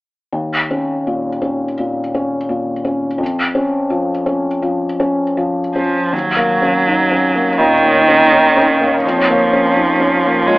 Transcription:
0.32 felt piano D#2
0.71 felt piano C#4
1.07 felt piano A#2
1.42 felt piano C#4
1.79 felt piano A#2
2.14 felt piano C#4
2.49 felt piano A#2
2.85 felt piano C#4
3.18 felt piano F2
3.55 felt piano C#4
3.90 felt piano F3
4.26 felt piano C#4
4.62 felt piano F3
5.00 felt piano C#4
5.37 felt piano F3
5.75 cello F3, felt piano C#4
6.12 felt piano D#2, cello F#3, ambient pad A#3 D#4 C#5
6.36 felt piano A#3
6.62 felt piano C#4
6.87 felt piano D#4
7.11 felt piano C#4
7.35 felt piano A#3
7.58 felt piano A#2, cello D#3
7.84 felt piano A#3
8.08 felt piano C#4
8.32 felt piano D#4
8.56 felt piano C#4
8.81 felt piano A#3
9.02 cello F3, ambient pad F4
9.07 felt piano F2
9.30 felt piano A#3
9.53 felt piano C#4
9.77 felt piano D#4
10.00 felt piano C#4
10.25 felt piano A#3
10.47 felt piano F3, cello G#3

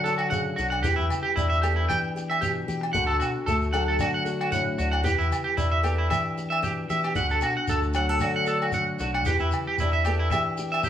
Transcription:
Already playing: steel-string acoustic guitar D3 F#3 D4, fingered electric bass D3
0.04 steel-string acoustic guitar F#4, clean electric guitar A4, shekere
0.18 clean electric guitar F#4, low agogo
0.30 steel-string acoustic guitar C#3, clean electric guitar F#5, shekere
0.56 fingered electric bass B1, steel-string acoustic guitar D3, clean electric guitar F#4, shekere
0.70 clean electric guitar F#5, low agogo
0.83 fingered electric bass E2, steel-string acoustic guitar E3 G4, clean electric guitar G4, shekere
0.96 fingered electric bass E2, clean electric guitar E4, shekere
1.10 fingered electric bass C#3, low agogo, shekere
1.23 clean electric guitar G4
1.36 fingered electric bass E2, steel-string acoustic guitar D4, clean electric guitar E4, shekere
1.50 clean electric guitar E5, shekere
1.62 steel-string acoustic guitar B3 A4, clean electric guitar G4, low agogo, shekere
1.76 clean electric guitar E4
1.89 fingered electric bass E3, steel-string acoustic guitar G4, clean electric guitar G5, low agogo, shekere
2.16 steel-string acoustic guitar G4, shekere
2.30 clean electric guitar E5, low agogo
2.41 steel-string acoustic guitar B2, clean electric guitar G4, shekere
2.68 fingered electric bass E3, steel-string acoustic guitar G4, shekere
2.81 muted clean electric guitar stroke, low agogo
2.93 fingered electric bass D2, steel-string acoustic guitar D3 F#4, clean electric guitar F#5, shekere
3.07 fingered electric bass D2, clean electric guitar A4, shekere
3.20 fingered electric bass B2, clean electric guitar F#4, low agogo, shekere
3.46 fingered electric bass D2, steel-string acoustic guitar A3, clean electric guitar A4, shekere
3.61 shekere
3.73 steel-string acoustic guitar F#3 A4, clean electric guitar F#5, low agogo, shekere
3.88 clean electric guitar A4
3.99 fingered electric bass D3, steel-string acoustic guitar D4, clean electric guitar F#4, low agogo, shekere
4.14 clean electric guitar F#5
4.25 steel-string acoustic guitar F#4, shekere
4.41 clean electric guitar F#4, low agogo
4.52 steel-string acoustic guitar A2, clean electric guitar F#5, shekere
4.78 fingered electric bass D2, steel-string acoustic guitar D4, clean electric guitar F#4, shekere
4.92 clean electric guitar F#5, low agogo
5.03 fingered electric bass E2, steel-string acoustic guitar E3 G4, clean electric guitar G4, shekere
5.18 fingered electric bass E2, clean electric guitar E4, shekere
5.31 fingered electric bass C#3, low agogo, shekere
5.44 clean electric guitar G4
5.57 fingered electric bass E2, steel-string acoustic guitar D4, clean electric guitar E4, shekere
5.72 clean electric guitar E5
5.83 steel-string acoustic guitar B3 A4, clean electric guitar G4, low agogo, shekere
5.98 clean electric guitar E4
6.10 fingered electric bass E3, steel-string acoustic guitar G4, clean electric guitar E5, low agogo, shekere
6.37 steel-string acoustic guitar G4, shekere
6.50 clean electric guitar E5, low agogo
6.62 steel-string acoustic guitar B2, clean electric guitar G4, shekere
6.90 fingered electric bass E3, steel-string acoustic guitar G4, clean electric guitar E5, shekere
7.03 clean electric guitar G4, low agogo, shekere
7.15 fingered electric bass D2, steel-string acoustic guitar D3 F#4, clean electric guitar F#5, shekere
7.29 fingered electric bass D2, clean electric guitar A4, shekere
7.41 fingered electric bass B2, clean electric guitar F#4, low agogo, shekere
7.57 clean electric guitar F#5
7.68 fingered electric bass D2, steel-string acoustic guitar A3, clean electric guitar A4, shekere
7.82 shekere
7.93 steel-string acoustic guitar F#3 F#4, clean electric guitar F#5, low agogo, shekere
8.09 steel-string acoustic guitar A4, clean electric guitar A4
8.20 fingered electric bass D3, steel-string acoustic guitar D4, clean electric guitar F#4, low agogo, shekere
8.36 clean electric guitar F#5
8.46 steel-string acoustic guitar F#4, clean electric guitar A4, shekere
8.62 clean electric guitar F#4, low agogo
8.72 clean electric guitar F#5, muted steel-string acoustic guitar stroke, shekere
8.99 fingered electric bass B1, steel-string acoustic guitar D3, clean electric guitar F#4, shekere
9.14 clean electric guitar F#5, low agogo
9.25 fingered electric bass E2, steel-string acoustic guitar E3 G4, clean electric guitar G4, shekere
9.39 fingered electric bass E2, clean electric guitar E4, shekere
9.51 fingered electric bass C#3, low agogo, shekere
9.67 clean electric guitar G4
9.78 fingered electric bass E2, steel-string acoustic guitar D4, clean electric guitar E4, shekere
9.92 clean electric guitar E5, shekere
10.04 steel-string acoustic guitar B3 A4, clean electric guitar G4, low agogo, shekere
10.19 clean electric guitar E4
10.31 fingered electric bass E3, steel-string acoustic guitar G4, clean electric guitar E5, low agogo, shekere
10.57 steel-string acoustic guitar G4, shekere
10.72 clean electric guitar E5, low agogo
10.83 steel-string acoustic guitar F#3, clean electric guitar G4, shekere

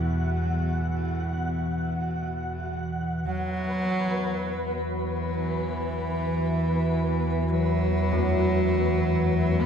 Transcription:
Already playing: synth drone E2 B2, cello E3, ambient pad B3 F#4 E5 F#5, synth texture F#5
3.27 synth drone E2 E3, cello F#3, synth texture B4
5.37 cello E3
7.50 cello F#3
8.12 church bells F#3
9.61 cello B3

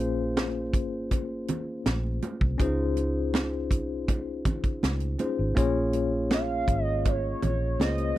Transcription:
Already playing: fingered electric bass A#1, tine electric piano A#3 C#4 F4 G#4 C5
0.37 snare, closed hi-hat, high conga
0.73 fingered electric bass G#1, kick, closed hi-hat
1.11 kick, closed hi-hat, muted conga
1.48 closed hi-hat, muted conga, low conga
1.86 fingered electric bass A#1, snare, closed hi-hat, high conga
2.22 closed hi-hat, high conga
2.41 fingered electric bass C2, kick
2.58 fingered electric bass C#2, tine electric piano C#4 D#4 F4 G#4 C5, kick, closed hi-hat, muted conga
2.97 closed hi-hat, muted conga
3.34 snare, closed hi-hat, high conga
3.71 fingered electric bass C2, kick, closed hi-hat
4.08 kick, closed hi-hat, muted conga
4.45 kick, closed hi-hat, muted conga, low conga
4.64 kick, closed hi-hat
4.83 fingered electric bass C#2, snare, closed hi-hat, high conga
5.00 closed hi-hat
5.19 tine electric piano C#4 D#4 F4 G#4 C5, closed hi-hat, high conga
5.39 fingered electric bass G#1
5.55 fingered electric bass A#1, tine electric piano A#3 C#4 F4 G#4 C#5, kick, closed hi-hat, muted conga
5.93 closed hi-hat, muted conga
6.31 analog synth lead F5, snare, closed hi-hat, high conga
6.68 fingered electric bass G#1, kick, closed hi-hat
6.85 analog synth lead D#5
7.05 analog synth lead C#5, kick, closed hi-hat, muted conga
7.42 fingered electric bass A#1, closed hi-hat, muted conga, low conga
7.79 fingered electric bass C#2, tine electric piano A#3 C#4 F4 G#4 C5, analog synth lead D#5, snare, closed hi-hat, high conga
7.98 closed hi-hat

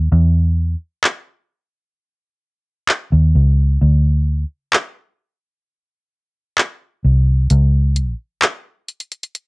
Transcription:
0.12 fingered electric bass E2
1.04 clap
2.89 clap
3.12 fingered electric bass D#2
3.35 fingered electric bass C#2
3.81 fingered electric bass D2
4.73 clap
6.58 clap
7.04 fingered electric bass C2
7.50 fingered electric bass C#2, closed hi-hat
7.96 closed hi-hat
8.42 clap, closed hi-hat
8.88 closed hi-hat
9.00 closed hi-hat
9.12 closed hi-hat
9.23 closed hi-hat
9.35 closed hi-hat

